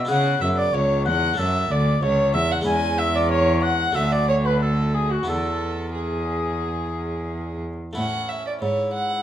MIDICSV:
0, 0, Header, 1, 5, 480
1, 0, Start_track
1, 0, Key_signature, 3, "major"
1, 0, Tempo, 643777
1, 69, Time_signature, 4, 2, 24, 8
1, 2948, Tempo, 669643
1, 5348, Tempo, 655022
1, 6757, End_track
2, 0, Start_track
2, 0, Title_t, "Oboe"
2, 0, Program_c, 0, 68
2, 0, Note_on_c, 0, 76, 85
2, 68, Note_on_c, 0, 78, 98
2, 79, Note_off_c, 0, 76, 0
2, 314, Note_on_c, 0, 76, 90
2, 325, Note_off_c, 0, 78, 0
2, 437, Note_on_c, 0, 74, 88
2, 448, Note_off_c, 0, 76, 0
2, 541, Note_on_c, 0, 73, 92
2, 552, Note_off_c, 0, 74, 0
2, 782, Note_off_c, 0, 73, 0
2, 787, Note_on_c, 0, 78, 107
2, 1033, Note_on_c, 0, 76, 89
2, 1044, Note_off_c, 0, 78, 0
2, 1274, Note_on_c, 0, 74, 93
2, 1285, Note_off_c, 0, 76, 0
2, 1506, Note_off_c, 0, 74, 0
2, 1511, Note_on_c, 0, 73, 90
2, 1740, Note_off_c, 0, 73, 0
2, 1744, Note_on_c, 0, 76, 106
2, 1799, Note_off_c, 0, 76, 0
2, 1874, Note_on_c, 0, 78, 79
2, 1927, Note_off_c, 0, 78, 0
2, 1989, Note_on_c, 0, 80, 104
2, 2228, Note_on_c, 0, 76, 99
2, 2239, Note_off_c, 0, 80, 0
2, 2348, Note_off_c, 0, 76, 0
2, 2355, Note_on_c, 0, 74, 93
2, 2459, Note_off_c, 0, 74, 0
2, 2464, Note_on_c, 0, 73, 102
2, 2707, Note_on_c, 0, 78, 103
2, 2718, Note_off_c, 0, 73, 0
2, 2945, Note_on_c, 0, 76, 92
2, 2956, Note_off_c, 0, 78, 0
2, 3064, Note_off_c, 0, 76, 0
2, 3074, Note_on_c, 0, 74, 90
2, 3182, Note_off_c, 0, 74, 0
2, 3186, Note_on_c, 0, 73, 90
2, 3311, Note_on_c, 0, 71, 81
2, 3322, Note_off_c, 0, 73, 0
2, 3426, Note_on_c, 0, 69, 79
2, 3436, Note_off_c, 0, 71, 0
2, 3652, Note_off_c, 0, 69, 0
2, 3657, Note_on_c, 0, 68, 84
2, 3785, Note_on_c, 0, 66, 73
2, 3796, Note_off_c, 0, 68, 0
2, 3898, Note_off_c, 0, 66, 0
2, 3902, Note_on_c, 0, 69, 94
2, 4208, Note_off_c, 0, 69, 0
2, 4377, Note_on_c, 0, 68, 72
2, 5563, Note_off_c, 0, 68, 0
2, 5826, Note_on_c, 0, 61, 50
2, 6277, Note_off_c, 0, 61, 0
2, 6311, Note_on_c, 0, 64, 58
2, 6757, Note_off_c, 0, 64, 0
2, 6757, End_track
3, 0, Start_track
3, 0, Title_t, "Violin"
3, 0, Program_c, 1, 40
3, 68, Note_on_c, 1, 78, 80
3, 300, Note_off_c, 1, 78, 0
3, 305, Note_on_c, 1, 76, 79
3, 354, Note_off_c, 1, 76, 0
3, 427, Note_on_c, 1, 74, 78
3, 557, Note_on_c, 1, 73, 77
3, 568, Note_off_c, 1, 74, 0
3, 790, Note_off_c, 1, 73, 0
3, 794, Note_on_c, 1, 78, 85
3, 1027, Note_off_c, 1, 78, 0
3, 1038, Note_on_c, 1, 76, 77
3, 1281, Note_on_c, 1, 74, 77
3, 1292, Note_off_c, 1, 76, 0
3, 1514, Note_off_c, 1, 74, 0
3, 1517, Note_on_c, 1, 73, 77
3, 1747, Note_off_c, 1, 73, 0
3, 1751, Note_on_c, 1, 76, 84
3, 1874, Note_on_c, 1, 78, 73
3, 1886, Note_off_c, 1, 76, 0
3, 1990, Note_off_c, 1, 78, 0
3, 1994, Note_on_c, 1, 80, 87
3, 2225, Note_on_c, 1, 76, 88
3, 2236, Note_off_c, 1, 80, 0
3, 2353, Note_on_c, 1, 74, 83
3, 2364, Note_off_c, 1, 76, 0
3, 2467, Note_off_c, 1, 74, 0
3, 2471, Note_on_c, 1, 73, 84
3, 2702, Note_off_c, 1, 73, 0
3, 2707, Note_on_c, 1, 78, 85
3, 2950, Note_on_c, 1, 76, 75
3, 2961, Note_off_c, 1, 78, 0
3, 3070, Note_on_c, 1, 74, 79
3, 3080, Note_off_c, 1, 76, 0
3, 3183, Note_off_c, 1, 74, 0
3, 3187, Note_on_c, 1, 73, 78
3, 3234, Note_off_c, 1, 73, 0
3, 3302, Note_on_c, 1, 71, 72
3, 3413, Note_off_c, 1, 71, 0
3, 3418, Note_on_c, 1, 69, 72
3, 3660, Note_on_c, 1, 68, 69
3, 3671, Note_off_c, 1, 69, 0
3, 3769, Note_on_c, 1, 66, 66
3, 3779, Note_off_c, 1, 68, 0
3, 3894, Note_on_c, 1, 69, 82
3, 3905, Note_off_c, 1, 66, 0
3, 4372, Note_off_c, 1, 69, 0
3, 4376, Note_on_c, 1, 68, 59
3, 5567, Note_off_c, 1, 68, 0
3, 5830, Note_on_c, 1, 78, 69
3, 6069, Note_on_c, 1, 76, 56
3, 6080, Note_off_c, 1, 78, 0
3, 6190, Note_off_c, 1, 76, 0
3, 6202, Note_on_c, 1, 74, 59
3, 6247, Note_off_c, 1, 74, 0
3, 6305, Note_on_c, 1, 73, 66
3, 6539, Note_off_c, 1, 73, 0
3, 6543, Note_on_c, 1, 78, 73
3, 6757, Note_off_c, 1, 78, 0
3, 6757, End_track
4, 0, Start_track
4, 0, Title_t, "Harpsichord"
4, 0, Program_c, 2, 6
4, 38, Note_on_c, 2, 59, 48
4, 49, Note_on_c, 2, 64, 50
4, 60, Note_on_c, 2, 68, 49
4, 72, Note_on_c, 2, 49, 56
4, 287, Note_off_c, 2, 49, 0
4, 313, Note_on_c, 2, 42, 54
4, 528, Note_off_c, 2, 42, 0
4, 553, Note_on_c, 2, 37, 53
4, 768, Note_off_c, 2, 37, 0
4, 791, Note_on_c, 2, 40, 59
4, 984, Note_off_c, 2, 59, 0
4, 990, Note_off_c, 2, 64, 0
4, 996, Note_off_c, 2, 68, 0
4, 998, Note_on_c, 2, 57, 56
4, 1006, Note_off_c, 2, 40, 0
4, 1009, Note_on_c, 2, 61, 55
4, 1022, Note_on_c, 2, 69, 50
4, 1032, Note_on_c, 2, 42, 60
4, 1244, Note_off_c, 2, 57, 0
4, 1245, Note_off_c, 2, 42, 0
4, 1250, Note_off_c, 2, 61, 0
4, 1272, Note_on_c, 2, 38, 56
4, 1485, Note_off_c, 2, 38, 0
4, 1512, Note_on_c, 2, 37, 66
4, 1726, Note_off_c, 2, 37, 0
4, 1745, Note_on_c, 2, 40, 63
4, 1948, Note_on_c, 2, 56, 52
4, 1956, Note_off_c, 2, 69, 0
4, 1957, Note_on_c, 2, 61, 58
4, 1963, Note_off_c, 2, 40, 0
4, 1970, Note_on_c, 2, 64, 51
4, 1980, Note_on_c, 2, 40, 58
4, 2900, Note_off_c, 2, 56, 0
4, 2905, Note_off_c, 2, 61, 0
4, 2912, Note_off_c, 2, 64, 0
4, 2916, Note_off_c, 2, 40, 0
4, 2925, Note_on_c, 2, 57, 54
4, 2937, Note_on_c, 2, 66, 52
4, 2947, Note_on_c, 2, 38, 61
4, 3858, Note_off_c, 2, 57, 0
4, 3863, Note_off_c, 2, 66, 0
4, 3864, Note_on_c, 2, 59, 45
4, 3868, Note_off_c, 2, 38, 0
4, 3876, Note_on_c, 2, 64, 41
4, 3898, Note_on_c, 2, 40, 53
4, 5659, Note_off_c, 2, 40, 0
4, 5789, Note_off_c, 2, 59, 0
4, 5795, Note_off_c, 2, 64, 0
4, 5807, Note_on_c, 2, 57, 36
4, 5822, Note_on_c, 2, 64, 35
4, 5843, Note_on_c, 2, 45, 37
4, 6286, Note_off_c, 2, 45, 0
4, 6314, Note_on_c, 2, 44, 39
4, 6757, Note_off_c, 2, 44, 0
4, 6757, Note_off_c, 2, 57, 0
4, 6757, Note_off_c, 2, 64, 0
4, 6757, End_track
5, 0, Start_track
5, 0, Title_t, "Cello"
5, 0, Program_c, 3, 42
5, 75, Note_on_c, 3, 49, 74
5, 306, Note_off_c, 3, 49, 0
5, 311, Note_on_c, 3, 42, 66
5, 546, Note_off_c, 3, 42, 0
5, 551, Note_on_c, 3, 37, 71
5, 797, Note_on_c, 3, 40, 76
5, 808, Note_off_c, 3, 37, 0
5, 1027, Note_off_c, 3, 40, 0
5, 1032, Note_on_c, 3, 42, 68
5, 1262, Note_off_c, 3, 42, 0
5, 1266, Note_on_c, 3, 38, 68
5, 1501, Note_off_c, 3, 38, 0
5, 1510, Note_on_c, 3, 37, 69
5, 1750, Note_on_c, 3, 40, 73
5, 1761, Note_off_c, 3, 37, 0
5, 1984, Note_off_c, 3, 40, 0
5, 1988, Note_on_c, 3, 40, 83
5, 2920, Note_off_c, 3, 40, 0
5, 2949, Note_on_c, 3, 38, 81
5, 3879, Note_off_c, 3, 38, 0
5, 3896, Note_on_c, 3, 40, 63
5, 5658, Note_off_c, 3, 40, 0
5, 5839, Note_on_c, 3, 45, 56
5, 6284, Note_off_c, 3, 45, 0
5, 6312, Note_on_c, 3, 44, 52
5, 6757, Note_off_c, 3, 44, 0
5, 6757, End_track
0, 0, End_of_file